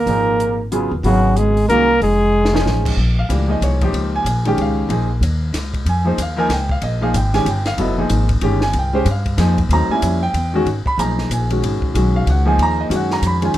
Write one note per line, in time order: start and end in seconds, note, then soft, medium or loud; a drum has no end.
0.00 0.64 A#3 medium
0.00 0.64 A#4 medium
0.06 0.87 G#1 medium
0.06 0.56 A#2 soft
0.06 0.55 F3 medium
0.06 0.56 D#4 soft
0.06 0.56 G#4 medium
0.06 0.57 A#4 medium
0.06 open hi-hat soft
0.40 closed hi-hat medium
0.72 0.90 C#3 medium
0.72 0.90 F#3 medium
0.72 0.90 B3 medium
0.72 0.90 F4 medium
0.72 0.91 G#4 medium
0.72 closed hi-hat medium
0.91 1.03 D#2 medium
1.03 1.64 G#1 medium
1.03 1.52 C#3 medium
1.03 1.52 F#3 medium
1.03 1.40 F#3 medium
1.03 1.53 B3 medium
1.03 1.38 F#4 medium
1.03 1.53 G#4 medium
1.03 1.53 F5 medium
1.03 open hi-hat soft
1.37 1.70 G#3 medium
1.37 1.68 G#4 medium
1.37 closed hi-hat soft
1.57 open hi-hat soft
1.68 1.98 C2 medium
1.68 1.86 D#3 medium
1.68 1.86 G#3 soft
1.68 1.99 A#3 medium
1.68 1.87 C#4 soft
1.68 1.87 F#4 soft
1.68 1.99 A#4 loud
1.68 1.87 A#4 medium
1.68 closed hi-hat soft
2.01 2.61 F1 medium
2.01 2.81 G#3 medium
2.01 2.82 G#4 medium
2.01 open hi-hat soft
2.45 snare medium
2.53 2.95 F3 medium
2.53 2.95 G#3 medium
2.53 2.95 C#4 medium
2.53 2.95 D#4 medium
2.53 2.96 G#4 medium
2.53 snare medium
2.65 2.95 A1 medium
2.65 snare soft
2.85 kick medium
2.85 crash medium
2.97 3.28 A#1 medium
3.19 3.48 F5 medium
3.29 3.60 C#2 medium
3.29 3.47 E3 medium
3.29 3.47 A3 soft
3.29 3.47 D4 soft
3.29 3.48 G4 medium
3.29 hi-hat pedal soft
3.29 ride medium
3.47 3.76 F3 medium
3.47 3.77 A#3 medium
3.47 3.77 D#4 medium
3.47 3.77 G#4 medium
3.47 3.62 D#5 medium
3.61 3.92 C2 medium
3.61 3.92 C#5 medium
3.61 hi-hat pedal soft
3.61 ride medium
3.81 4.23 F3 medium
3.81 4.23 A#3 medium
3.81 4.24 D#4 medium
3.81 4.24 G4 medium
3.81 kick soft
3.81 ride soft
3.93 4.24 C#2 medium
3.93 ride medium
4.16 4.44 G#5 medium
4.25 4.56 A#1 medium
4.25 hi-hat pedal medium
4.25 ride medium
4.45 4.87 D#3 medium
4.45 4.88 G#3 medium
4.45 4.88 C#4 medium
4.45 4.88 G4 medium
4.45 4.59 G5 medium
4.45 ride soft
4.57 4.88 C#2 medium
4.57 ride soft
4.61 4.90 F5 medium
4.88 5.20 A#1 medium
4.88 5.07 F3 medium
4.88 5.07 A#3 medium
4.88 5.08 D#4 medium
4.88 5.08 G#4 medium
4.88 ride medium
5.21 5.52 D#2 medium
5.21 hi-hat pedal medium
5.21 ride medium
5.53 5.84 C#2 medium
5.53 snare soft
5.53 hi-hat pedal medium
5.53 ride medium
5.74 kick medium
5.74 ride soft
5.85 6.17 F2 medium
5.85 6.07 G#5 medium
5.85 ride medium
6.04 6.16 F3 medium
6.04 6.17 A#3 medium
6.04 6.17 D#4 medium
6.04 6.17 G#4 medium
6.04 6.18 C5 medium
6.18 6.48 D#2 medium
6.18 hi-hat pedal medium
6.18 ride medium
6.22 6.39 F5 medium
6.36 6.48 F3 medium
6.36 6.48 A#3 medium
6.36 6.49 D#4 medium
6.36 6.49 A#4 medium
6.36 6.50 G#5 medium
6.49 6.81 C#2 medium
6.49 6.70 G5 medium
6.49 snare soft
6.49 ride medium
6.69 6.83 F5 medium
6.69 kick medium
6.82 7.13 A#1 medium
6.82 7.02 D#5 medium
6.82 ride medium
7.01 7.13 F3 medium
7.01 7.13 A#3 medium
7.01 7.13 D#4 medium
7.01 7.14 G#4 medium
7.01 7.14 F5 medium
7.14 7.45 G#1 medium
7.14 7.34 G5 medium
7.14 hi-hat pedal medium
7.14 ride medium
7.33 7.45 D#3 medium
7.33 7.45 G#3 medium
7.33 7.45 C#4 medium
7.33 7.46 G4 medium
7.33 7.46 G#5 loud
7.33 snare soft
7.33 ride soft
7.45 7.77 G1 medium
7.45 hi-hat pedal medium
7.45 ride medium
7.49 7.67 G5 medium
7.66 7.78 F5 medium
7.66 snare soft
7.66 ride soft
7.78 8.09 F1 medium
7.78 7.96 F#3 medium
7.78 7.96 B3 medium
7.78 7.96 E4 medium
7.78 7.96 A4 medium
7.78 8.10 D#5 medium
7.78 ride medium
7.98 8.26 F3 medium
7.98 8.26 A#3 medium
7.98 8.26 D#4 medium
7.98 8.27 G#4 medium
8.10 8.41 G#1 medium
8.10 hi-hat pedal soft
8.10 ride medium
8.29 kick medium
8.29 ride soft
8.41 8.73 G1 medium
8.41 8.60 D#3 medium
8.41 8.60 G#3 medium
8.41 8.60 C#4 medium
8.41 8.60 G4 medium
8.41 ride medium
8.61 8.74 G#5 medium
8.61 snare soft
8.73 9.05 C2 medium
8.73 ride medium
8.79 9.06 G5 medium
8.93 9.05 G#3 medium
8.93 9.05 C#4 medium
8.93 9.05 G4 medium
8.93 9.05 C5 medium
9.05 9.37 G2 medium
9.05 hi-hat pedal medium
9.05 ride medium
9.11 9.57 F5 medium
9.26 kick medium
9.26 ride soft
9.37 9.68 F2 medium
9.37 9.55 F3 medium
9.37 9.56 A#3 medium
9.37 9.56 D#4 medium
9.37 9.56 G#4 medium
9.37 snare soft
9.37 hi-hat pedal medium
9.37 ride medium
9.58 kick medium
9.58 ride soft
9.69 9.88 D#2 medium
9.69 9.88 F#3 medium
9.69 9.89 A3 medium
9.69 9.89 C4 soft
9.69 9.91 A#5 medium
9.69 ride medium
9.73 9.89 D#4 medium
9.89 10.18 G3 medium
9.89 10.19 A#3 medium
9.89 10.19 C#4 medium
9.89 10.20 G#5 loud
9.89 muted upright bass stroke soft
9.93 10.19 E4 medium
10.02 10.33 F2 medium
10.02 hi-hat pedal medium
10.02 ride medium
10.23 10.64 G5 loud
10.34 10.65 E2 medium
10.34 ride medium
10.53 10.65 D#3 medium
10.53 10.65 G#3 medium
10.53 10.66 C#4 medium
10.53 10.66 F#4 medium
10.65 10.84 G#1 medium
10.65 ride medium
10.85 10.98 B5 loud
10.85 muted upright bass stroke soft
10.85 kick medium
10.98 11.29 B1 medium
10.98 11.46 F3 medium
10.98 11.46 A#3 medium
10.98 11.46 D#4 soft
10.98 11.47 G#4 medium
10.98 11.29 A#5 medium
10.98 hi-hat pedal medium
10.98 ride medium
11.18 snare soft
11.29 11.61 A#1 medium
11.29 hi-hat pedal medium
11.29 ride medium
11.33 11.80 G#5 medium
11.50 11.92 D#3 soft
11.50 11.92 G#3 medium
11.50 11.92 C#4 soft
11.50 11.93 F#4 medium
11.50 ride soft
11.62 11.80 G#1 medium
11.62 ride medium
11.82 muted upright bass stroke soft
11.82 kick medium
11.94 12.25 B1 medium
11.94 12.42 D#3 soft
11.94 12.42 G#3 medium
11.94 12.42 C#4 soft
11.94 12.43 F#4 medium
11.94 hi-hat pedal medium
11.94 ride medium
12.16 12.27 F5 medium
12.26 12.57 C#2 medium
12.26 12.47 F#5 medium
12.26 ride medium
12.45 12.88 F3 medium
12.45 12.88 A#3 medium
12.45 12.88 D#4 medium
12.45 12.88 G#4 medium
12.45 12.59 G#5 medium
12.58 12.89 D#2 medium
12.58 ride medium
12.63 12.79 A#5 medium
12.81 12.91 D#5 medium
12.89 13.21 F#2 medium
12.89 13.37 D#3 medium
12.89 13.37 G#3 medium
12.89 13.38 C#4 medium
12.89 13.38 F#4 medium
12.89 hi-hat pedal medium
12.89 ride medium
12.96 13.12 F#5 medium
13.11 13.23 A#5 medium
13.11 snare soft
13.22 13.53 F2 medium
13.22 hi-hat pedal medium
13.22 ride medium
13.27 13.43 B5 medium
13.41 13.58 D#3 medium
13.41 13.58 G#3 medium
13.41 13.58 C#4 medium
13.41 13.58 F4 medium
13.41 ride soft
13.45 13.55 G#5 medium
13.54 13.58 D#2 medium
13.54 ride medium